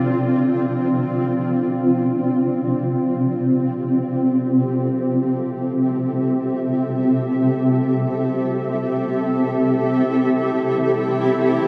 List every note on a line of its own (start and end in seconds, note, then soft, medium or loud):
0.00 11.68 C4 medium
0.00 2.22 D4 medium
0.00 7.78 F4 medium
0.00 1.12 A4 medium
0.00 3.66 D5 medium
2.55 11.68 G4 medium
3.30 11.68 A4 medium
4.07 11.68 E5 medium
8.55 11.68 E4 medium